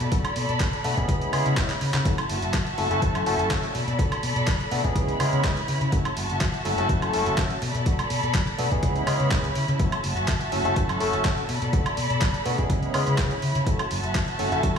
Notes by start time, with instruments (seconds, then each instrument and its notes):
Already playing: violin section A4 D5 B5
0.00 fingered electric bass B2, closed hi-hat
0.11 fingered electric bass B1, tine electric piano A3 B3 D4 F#4 A4, kick, closed hi-hat
0.25 muted fingered electric bass stroke, closed hi-hat, high woodblock
0.36 fingered electric bass B2, open hi-hat
0.49 fingered electric bass B2, closed hi-hat
0.60 fingered electric bass B1, kick, clap, closed hi-hat
0.73 closed hi-hat
0.84 fingered electric bass B2, tine electric piano A3 B3 D4 F#4 A4, open hi-hat
0.97 fingered electric bass B2, tine electric piano G#3 B3 C#4 E4 G#4, kick, closed hi-hat
1.08 fingered electric bass C#2, violin section E4 C#5, kick, closed hi-hat
1.21 muted fingered electric bass stroke, closed hi-hat
1.32 fingered electric bass C#3, tine electric piano G#3 B3 C#4 E4 G#4, open hi-hat, high woodblock
1.46 fingered electric bass C#3, closed hi-hat
1.57 fingered electric bass C#2, tine electric piano G#3 B3 E4 G#4, kick, clap, closed hi-hat
1.70 clap, closed hi-hat
1.81 fingered electric bass C#3, open hi-hat
1.94 fingered electric bass C#3, clap, closed hi-hat
2.05 fingered electric bass F#2, tine electric piano A3 C#4 E4 F#4 A4, violin section F#4 E5 A5, kick, closed hi-hat
2.18 closed hi-hat, high woodblock
2.29 fingered electric bass F#1, open hi-hat
2.42 fingered electric bass F#1, closed hi-hat
2.54 fingered electric bass F#2, kick, clap, closed hi-hat
2.67 closed hi-hat
2.78 fingered electric bass F#1, tine electric piano A3 C#4 E4 F#4 A4, open hi-hat
2.90 fingered electric bass F#1, tine electric piano A3 C#4 E4 F#4 A4, closed hi-hat
3.02 fingered electric bass F#2, kick, closed hi-hat
3.15 closed hi-hat, high woodblock
3.26 fingered electric bass F#1, tine electric piano A3 C#4 E4 F#4 A4, open hi-hat
3.39 fingered electric bass F#1, closed hi-hat
3.50 fingered electric bass F#2, tine electric piano A3 C#4 F#4 A4, kick, clap, closed hi-hat
3.63 closed hi-hat
3.74 fingered electric bass B2, violin section A4 D5 B5, open hi-hat
3.87 fingered electric bass B2, closed hi-hat
3.98 fingered electric bass B1, tine electric piano A3 B3 D4 F#4 A4, kick, closed hi-hat
4.12 muted fingered electric bass stroke, closed hi-hat, high woodblock
4.23 fingered electric bass B2, open hi-hat
4.36 fingered electric bass B2, closed hi-hat
4.47 fingered electric bass B1, kick, clap, closed hi-hat
4.60 closed hi-hat
4.71 fingered electric bass B2, tine electric piano A3 B3 D4 F#4 A4, open hi-hat
4.84 fingered electric bass B2, tine electric piano G#3 B3 C#4 E4 G#4, kick, closed hi-hat
4.95 fingered electric bass C#2, violin section E4 C#5 B5, kick, closed hi-hat
5.08 muted fingered electric bass stroke, closed hi-hat
5.19 fingered electric bass C#3, tine electric piano G#3 B3 C#4 E4 G#4, open hi-hat, high woodblock
5.32 fingered electric bass C#3, closed hi-hat
5.44 fingered electric bass C#2, tine electric piano G#3 B3 C#4 G#4, kick, clap, closed hi-hat
5.57 closed hi-hat
5.68 fingered electric bass C#3, open hi-hat
5.81 fingered electric bass C#3, closed hi-hat
5.92 fingered electric bass F#2, tine electric piano A3 C#4 E4 F#4 A4, violin section F#4 E5 A5, kick, closed hi-hat
6.05 closed hi-hat, high woodblock
6.16 fingered electric bass F#1, open hi-hat
6.29 fingered electric bass F#1, closed hi-hat
6.41 fingered electric bass F#2, kick, clap, closed hi-hat
6.54 closed hi-hat
6.65 fingered electric bass F#1, tine electric piano A3 C#4 E4 F#4 A4, open hi-hat
6.77 fingered electric bass F#1, tine electric piano A3 C#4 E4 F#4 A4, closed hi-hat
6.89 fingered electric bass F#2, kick, closed hi-hat
7.02 closed hi-hat, high woodblock
7.13 fingered electric bass F#1, tine electric piano A3 C#4 E4 F#4 A4, open hi-hat
7.26 fingered electric bass F#1, closed hi-hat
7.37 fingered electric bass F#2, tine electric piano A3 E4, kick, clap, closed hi-hat
7.50 closed hi-hat
7.62 fingered electric bass B2, violin section A4 D5 B5, open hi-hat
7.74 fingered electric bass B2, closed hi-hat
7.86 fingered electric bass B1, tine electric piano A3 B3 D4 F#4 A4, kick, closed hi-hat
7.99 muted fingered electric bass stroke, closed hi-hat, high woodblock
8.10 fingered electric bass B2, open hi-hat
8.23 fingered electric bass B2, closed hi-hat
8.34 fingered electric bass B1, kick, clap, closed hi-hat
8.47 closed hi-hat
8.58 fingered electric bass B2, tine electric piano A3 B3 D4 F#4 A4, open hi-hat
8.71 fingered electric bass B2, tine electric piano G#3 B3 C#4 E4 G#4, kick, closed hi-hat
8.83 fingered electric bass C#2, violin section E4 C#5 B5, kick, closed hi-hat
8.96 muted fingered electric bass stroke, closed hi-hat
9.07 fingered electric bass C#3, tine electric piano G#3 B3 C#4 E4 G#4, open hi-hat, high woodblock
9.20 fingered electric bass C#3, closed hi-hat
9.31 fingered electric bass C#2, tine electric piano G#3 B3 C#4 E4 G#4, kick, clap, closed hi-hat
9.44 closed hi-hat
9.55 fingered electric bass C#3, open hi-hat
9.68 fingered electric bass C#3, closed hi-hat
9.79 fingered electric bass F#2, tine electric piano A3 C#4 E4 F#4 A4, violin section F#4 E5 A5, kick, closed hi-hat
9.92 closed hi-hat, high woodblock
10.04 fingered electric bass F#1, open hi-hat
10.17 fingered electric bass F#1, closed hi-hat
10.28 fingered electric bass F#2, kick, clap, closed hi-hat
10.41 closed hi-hat
10.52 fingered electric bass F#1, tine electric piano A3 C#4 E4 F#4 A4, open hi-hat
10.65 fingered electric bass F#1, tine electric piano A3 C#4 E4 F#4 A4, closed hi-hat
10.76 fingered electric bass F#2, kick, closed hi-hat
10.89 closed hi-hat, high woodblock
11.00 fingered electric bass F#1, tine electric piano A3 C#4 E4 F#4 A4, open hi-hat
11.13 fingered electric bass F#1, closed hi-hat
11.25 fingered electric bass F#2, tine electric piano F#4 A4, kick, clap, closed hi-hat
11.38 closed hi-hat
11.49 fingered electric bass B2, violin section A4 D5 B5, open hi-hat
11.62 fingered electric bass B2, closed hi-hat
11.73 fingered electric bass B1, tine electric piano A3 B3 D4 F#4 A4, kick, closed hi-hat
11.86 muted fingered electric bass stroke, closed hi-hat, high woodblock
11.97 fingered electric bass B2, open hi-hat
12.10 fingered electric bass B2, closed hi-hat
12.21 fingered electric bass B1, kick, clap, closed hi-hat
12.34 closed hi-hat
12.45 fingered electric bass B2, tine electric piano A3 B3 D4 F#4 A4, open hi-hat
12.58 fingered electric bass B2, tine electric piano G#3 B3 C#4 E4 G#4, kick, closed hi-hat
12.70 fingered electric bass C#2, violin section E4 C#5 B5, kick, closed hi-hat
12.82 muted fingered electric bass stroke, closed hi-hat
12.94 fingered electric bass C#3, tine electric piano G#3 B3 C#4 E4 G#4, open hi-hat, high woodblock
13.07 fingered electric bass C#3, closed hi-hat
13.18 fingered electric bass C#2, kick, clap, closed hi-hat
13.31 closed hi-hat
13.42 fingered electric bass C#3, open hi-hat
13.55 fingered electric bass C#3, closed hi-hat
13.66 fingered electric bass F#2, tine electric piano A3 C#4 E4 F#4 A4, violin section F#4 E5 A5, kick, closed hi-hat
13.79 closed hi-hat, high woodblock
13.91 fingered electric bass F#1, open hi-hat
14.04 fingered electric bass F#1, closed hi-hat
14.15 fingered electric bass F#2, kick, clap, closed hi-hat
14.28 closed hi-hat
14.39 fingered electric bass F#1, tine electric piano A3 C#4 E4 F#4 A4, open hi-hat
14.52 fingered electric bass F#1, tine electric piano A3 C#4 E4 F#4 A4, closed hi-hat
14.63 fingered electric bass F#2, kick, closed hi-hat